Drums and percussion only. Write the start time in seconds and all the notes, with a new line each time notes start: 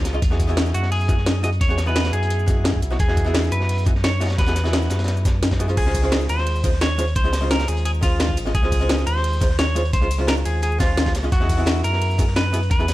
0.05 snare, closed hi-hat, shaker
0.22 kick, closed hi-hat
0.31 snare
0.40 kick, closed hi-hat, shaker
0.49 closed hi-hat
0.57 snare, closed hi-hat
0.66 snare, shaker
0.74 closed hi-hat, shaker
0.83 snare
0.92 closed hi-hat, open hi-hat
1.01 shaker
1.09 kick, closed hi-hat, shaker
1.17 snare
1.26 snare, closed hi-hat
1.44 closed hi-hat, shaker
1.52 closed hi-hat
1.61 kick, closed hi-hat
1.70 closed hi-hat
1.78 snare, closed hi-hat, shaker
1.95 snare, closed hi-hat
2.05 snare, closed hi-hat, shaker
2.13 closed hi-hat, shaker
2.23 closed hi-hat
2.30 closed hi-hat
2.39 shaker
2.48 kick, closed hi-hat, shaker
2.64 snare, closed hi-hat
2.74 kick
2.82 closed hi-hat, shaker
2.91 snare
2.99 kick, closed hi-hat
3.08 snare
3.17 kick, closed hi-hat, shaker
3.26 closed hi-hat
3.34 snare, closed hi-hat
3.43 snare, shaker
3.52 closed hi-hat, shaker
3.61 snare
3.69 closed hi-hat, open hi-hat
3.78 shaker
3.86 kick, closed hi-hat, shaker
3.95 snare
4.04 snare, closed hi-hat
4.21 snare, closed hi-hat, shaker
4.25 snare, closed hi-hat
4.30 snare, closed hi-hat
4.38 kick, snare, closed hi-hat
4.46 snare, closed hi-hat, shaker
4.55 snare, closed hi-hat, shaker
4.65 snare, closed hi-hat
4.73 snare, closed hi-hat
4.82 snare, shaker
4.90 snare, closed hi-hat, shaker
4.99 snare, closed hi-hat
5.04 snare, closed hi-hat
5.08 snare, closed hi-hat
5.17 shaker
5.25 kick, snare, closed hi-hat, shaker
5.42 snare, closed hi-hat
5.51 kick, snare, closed hi-hat
5.60 closed hi-hat, shaker
5.69 closed hi-hat
5.77 kick, closed hi-hat, crash
5.86 snare
5.94 kick, closed hi-hat, ride, shaker
6.03 closed hi-hat
6.12 snare, closed hi-hat
6.21 snare, shaker
6.29 closed hi-hat, ride, shaker
6.38 snare
6.46 closed hi-hat, open hi-hat
6.56 shaker
6.64 kick, closed hi-hat, ride, shaker
6.73 snare
6.81 snare, closed hi-hat
6.99 closed hi-hat, ride, shaker
7.07 closed hi-hat
7.15 kick, closed hi-hat
7.25 closed hi-hat
7.33 snare, closed hi-hat, ride, shaker
7.51 snare, closed hi-hat
7.59 snare, closed hi-hat, shaker
7.68 closed hi-hat, ride, shaker
7.77 closed hi-hat
7.85 closed hi-hat
7.94 shaker
8.03 kick, closed hi-hat, ride, shaker
8.20 snare, closed hi-hat
8.29 kick
8.37 closed hi-hat, ride, shaker
8.46 snare
8.55 kick, closed hi-hat
8.63 snare
8.72 kick, closed hi-hat, ride, shaker
8.81 closed hi-hat
8.89 snare, closed hi-hat
8.98 snare, shaker
9.07 closed hi-hat, ride, shaker
9.16 snare
9.24 closed hi-hat, open hi-hat
9.33 shaker
9.41 kick, closed hi-hat, ride, shaker
9.50 snare
9.59 snare, closed hi-hat
9.76 closed hi-hat, ride, shaker
9.85 closed hi-hat
9.93 kick, closed hi-hat
10.02 closed hi-hat
10.11 closed hi-hat, ride, shaker
10.27 snare, closed hi-hat
10.37 shaker
10.45 closed hi-hat, ride, shaker
10.62 closed hi-hat
10.72 shaker
10.80 kick, snare, closed hi-hat, ride, shaker
10.97 snare, closed hi-hat
11.06 kick, snare, closed hi-hat
11.14 snare, closed hi-hat, ride, shaker
11.32 kick, closed hi-hat
11.41 snare
11.49 kick, closed hi-hat, ride, shaker
11.58 closed hi-hat
11.66 snare, closed hi-hat
11.76 snare, shaker
11.84 closed hi-hat, ride, shaker
11.93 snare
12.01 closed hi-hat, open hi-hat
12.11 shaker
12.19 kick, closed hi-hat, ride, shaker
12.28 snare
12.36 snare, closed hi-hat
12.54 closed hi-hat, ride, shaker
12.62 closed hi-hat
12.71 kick, closed hi-hat
12.80 closed hi-hat
12.88 snare, closed hi-hat, ride, shaker